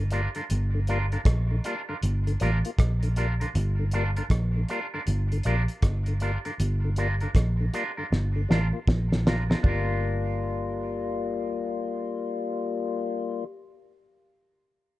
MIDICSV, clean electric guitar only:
0, 0, Header, 1, 2, 480
1, 0, Start_track
1, 0, Key_signature, -2, "minor"
1, 0, Tempo, 761421
1, 311, Time_signature, 4, 2, 24, 8
1, 9452, End_track
2, 0, Start_track
2, 0, Title_t, "Clean electric guitar"
2, 0, Program_c, 0, 27
2, 72, Note_on_c, 0, 62, 86
2, 78, Note_on_c, 0, 65, 90
2, 80, Note_on_c, 0, 70, 84
2, 177, Note_off_c, 0, 62, 0
2, 180, Note_off_c, 0, 65, 0
2, 181, Note_off_c, 0, 70, 0
2, 225, Note_on_c, 0, 70, 57
2, 230, Note_on_c, 0, 65, 65
2, 234, Note_on_c, 0, 62, 54
2, 273, Note_off_c, 0, 70, 0
2, 275, Note_off_c, 0, 65, 0
2, 277, Note_off_c, 0, 62, 0
2, 560, Note_on_c, 0, 62, 88
2, 565, Note_on_c, 0, 65, 86
2, 565, Note_on_c, 0, 70, 89
2, 661, Note_off_c, 0, 62, 0
2, 664, Note_off_c, 0, 65, 0
2, 664, Note_off_c, 0, 70, 0
2, 710, Note_on_c, 0, 70, 55
2, 711, Note_on_c, 0, 65, 54
2, 717, Note_on_c, 0, 62, 44
2, 755, Note_off_c, 0, 65, 0
2, 755, Note_off_c, 0, 70, 0
2, 758, Note_off_c, 0, 62, 0
2, 1038, Note_on_c, 0, 62, 88
2, 1040, Note_on_c, 0, 65, 91
2, 1045, Note_on_c, 0, 70, 90
2, 1140, Note_off_c, 0, 62, 0
2, 1142, Note_off_c, 0, 65, 0
2, 1144, Note_off_c, 0, 70, 0
2, 1190, Note_on_c, 0, 70, 61
2, 1193, Note_on_c, 0, 65, 57
2, 1197, Note_on_c, 0, 62, 53
2, 1235, Note_off_c, 0, 70, 0
2, 1237, Note_off_c, 0, 65, 0
2, 1239, Note_off_c, 0, 62, 0
2, 1520, Note_on_c, 0, 62, 101
2, 1525, Note_on_c, 0, 65, 111
2, 1527, Note_on_c, 0, 70, 108
2, 1622, Note_off_c, 0, 62, 0
2, 1624, Note_off_c, 0, 65, 0
2, 1625, Note_off_c, 0, 70, 0
2, 1994, Note_on_c, 0, 62, 78
2, 1997, Note_on_c, 0, 65, 82
2, 2003, Note_on_c, 0, 70, 89
2, 2099, Note_off_c, 0, 62, 0
2, 2101, Note_off_c, 0, 65, 0
2, 2103, Note_off_c, 0, 70, 0
2, 2145, Note_on_c, 0, 70, 58
2, 2152, Note_on_c, 0, 65, 61
2, 2156, Note_on_c, 0, 62, 51
2, 2193, Note_off_c, 0, 70, 0
2, 2197, Note_off_c, 0, 65, 0
2, 2199, Note_off_c, 0, 62, 0
2, 2479, Note_on_c, 0, 62, 97
2, 2480, Note_on_c, 0, 65, 84
2, 2485, Note_on_c, 0, 70, 92
2, 2582, Note_off_c, 0, 62, 0
2, 2582, Note_off_c, 0, 65, 0
2, 2585, Note_off_c, 0, 70, 0
2, 2628, Note_on_c, 0, 70, 53
2, 2632, Note_on_c, 0, 65, 48
2, 2636, Note_on_c, 0, 62, 43
2, 2675, Note_off_c, 0, 70, 0
2, 2677, Note_off_c, 0, 65, 0
2, 2679, Note_off_c, 0, 62, 0
2, 2958, Note_on_c, 0, 62, 86
2, 2963, Note_on_c, 0, 65, 92
2, 2967, Note_on_c, 0, 70, 87
2, 3062, Note_off_c, 0, 62, 0
2, 3064, Note_off_c, 0, 65, 0
2, 3066, Note_off_c, 0, 70, 0
2, 3112, Note_on_c, 0, 70, 68
2, 3117, Note_on_c, 0, 65, 65
2, 3119, Note_on_c, 0, 62, 56
2, 3158, Note_off_c, 0, 70, 0
2, 3160, Note_off_c, 0, 65, 0
2, 3161, Note_off_c, 0, 62, 0
2, 3436, Note_on_c, 0, 62, 99
2, 3439, Note_on_c, 0, 65, 112
2, 3444, Note_on_c, 0, 70, 101
2, 3541, Note_off_c, 0, 62, 0
2, 3542, Note_off_c, 0, 65, 0
2, 3545, Note_off_c, 0, 70, 0
2, 3915, Note_on_c, 0, 62, 78
2, 3919, Note_on_c, 0, 65, 78
2, 3921, Note_on_c, 0, 70, 88
2, 4021, Note_off_c, 0, 62, 0
2, 4023, Note_off_c, 0, 65, 0
2, 4024, Note_off_c, 0, 70, 0
2, 4067, Note_on_c, 0, 70, 62
2, 4071, Note_on_c, 0, 65, 55
2, 4074, Note_on_c, 0, 62, 47
2, 4115, Note_off_c, 0, 70, 0
2, 4118, Note_off_c, 0, 65, 0
2, 4119, Note_off_c, 0, 62, 0
2, 4397, Note_on_c, 0, 62, 76
2, 4400, Note_on_c, 0, 65, 84
2, 4405, Note_on_c, 0, 70, 81
2, 4502, Note_off_c, 0, 62, 0
2, 4503, Note_off_c, 0, 65, 0
2, 4506, Note_off_c, 0, 70, 0
2, 4547, Note_on_c, 0, 70, 51
2, 4553, Note_on_c, 0, 65, 49
2, 4555, Note_on_c, 0, 62, 42
2, 4596, Note_off_c, 0, 70, 0
2, 4599, Note_off_c, 0, 65, 0
2, 4600, Note_off_c, 0, 62, 0
2, 4876, Note_on_c, 0, 62, 92
2, 4881, Note_on_c, 0, 65, 86
2, 4885, Note_on_c, 0, 70, 88
2, 4982, Note_off_c, 0, 62, 0
2, 4985, Note_off_c, 0, 65, 0
2, 4986, Note_off_c, 0, 70, 0
2, 5027, Note_on_c, 0, 70, 61
2, 5033, Note_on_c, 0, 65, 54
2, 5037, Note_on_c, 0, 62, 44
2, 5076, Note_off_c, 0, 70, 0
2, 5079, Note_off_c, 0, 65, 0
2, 5081, Note_off_c, 0, 62, 0
2, 5359, Note_on_c, 0, 62, 88
2, 5360, Note_on_c, 0, 65, 97
2, 5365, Note_on_c, 0, 70, 91
2, 5463, Note_off_c, 0, 62, 0
2, 5464, Note_off_c, 0, 65, 0
2, 5466, Note_off_c, 0, 70, 0
2, 5838, Note_on_c, 0, 62, 71
2, 5842, Note_on_c, 0, 65, 72
2, 5846, Note_on_c, 0, 70, 83
2, 5943, Note_off_c, 0, 62, 0
2, 5945, Note_off_c, 0, 65, 0
2, 5947, Note_off_c, 0, 70, 0
2, 5988, Note_on_c, 0, 70, 66
2, 5994, Note_on_c, 0, 65, 62
2, 5996, Note_on_c, 0, 62, 55
2, 6037, Note_off_c, 0, 70, 0
2, 6040, Note_off_c, 0, 65, 0
2, 6041, Note_off_c, 0, 62, 0
2, 6071, Note_on_c, 0, 62, 75
2, 6092, Note_on_c, 0, 65, 88
2, 6105, Note_on_c, 0, 70, 90
2, 8540, Note_off_c, 0, 62, 0
2, 8560, Note_off_c, 0, 65, 0
2, 8574, Note_off_c, 0, 70, 0
2, 9452, End_track
0, 0, End_of_file